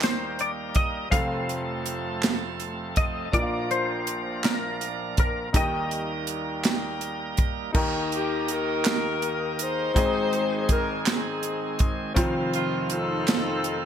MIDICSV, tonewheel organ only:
0, 0, Header, 1, 2, 480
1, 0, Start_track
1, 0, Key_signature, -3, "major"
1, 0, Tempo, 736196
1, 728, Time_signature, 6, 3, 24, 8
1, 9031, End_track
2, 0, Start_track
2, 0, Title_t, "Tonewheel organ"
2, 0, Program_c, 0, 16
2, 0, Note_on_c, 0, 55, 55
2, 0, Note_on_c, 0, 58, 55
2, 0, Note_on_c, 0, 63, 48
2, 0, Note_on_c, 0, 70, 64
2, 707, Note_off_c, 0, 63, 0
2, 708, Note_off_c, 0, 58, 0
2, 709, Note_off_c, 0, 70, 0
2, 710, Note_off_c, 0, 55, 0
2, 728, Note_on_c, 0, 60, 53
2, 729, Note_on_c, 0, 57, 48
2, 732, Note_on_c, 0, 68, 52
2, 734, Note_on_c, 0, 53, 59
2, 767, Note_on_c, 0, 69, 67
2, 772, Note_off_c, 0, 68, 0
2, 2144, Note_off_c, 0, 60, 0
2, 2145, Note_off_c, 0, 57, 0
2, 2147, Note_off_c, 0, 53, 0
2, 2161, Note_on_c, 0, 62, 54
2, 2164, Note_off_c, 0, 69, 0
2, 2165, Note_on_c, 0, 53, 60
2, 2166, Note_on_c, 0, 58, 56
2, 2168, Note_on_c, 0, 70, 67
2, 3582, Note_off_c, 0, 62, 0
2, 3583, Note_off_c, 0, 53, 0
2, 3584, Note_off_c, 0, 58, 0
2, 3585, Note_off_c, 0, 70, 0
2, 3613, Note_on_c, 0, 55, 62
2, 3615, Note_on_c, 0, 70, 64
2, 3616, Note_on_c, 0, 58, 54
2, 3619, Note_on_c, 0, 63, 52
2, 5028, Note_off_c, 0, 55, 0
2, 5028, Note_off_c, 0, 70, 0
2, 5029, Note_off_c, 0, 58, 0
2, 5031, Note_off_c, 0, 63, 0
2, 5048, Note_on_c, 0, 58, 60
2, 5049, Note_on_c, 0, 51, 73
2, 5053, Note_on_c, 0, 70, 80
2, 5055, Note_on_c, 0, 63, 60
2, 6465, Note_off_c, 0, 51, 0
2, 6465, Note_off_c, 0, 58, 0
2, 6468, Note_off_c, 0, 70, 0
2, 6469, Note_off_c, 0, 63, 0
2, 6496, Note_on_c, 0, 51, 56
2, 6496, Note_on_c, 0, 68, 66
2, 6500, Note_on_c, 0, 60, 54
2, 6503, Note_on_c, 0, 56, 55
2, 7908, Note_off_c, 0, 51, 0
2, 7908, Note_off_c, 0, 68, 0
2, 7910, Note_off_c, 0, 60, 0
2, 7912, Note_off_c, 0, 56, 0
2, 7937, Note_on_c, 0, 53, 72
2, 7937, Note_on_c, 0, 60, 62
2, 7939, Note_on_c, 0, 51, 71
2, 7943, Note_on_c, 0, 65, 86
2, 9031, Note_off_c, 0, 51, 0
2, 9031, Note_off_c, 0, 53, 0
2, 9031, Note_off_c, 0, 60, 0
2, 9031, Note_off_c, 0, 65, 0
2, 9031, End_track
0, 0, End_of_file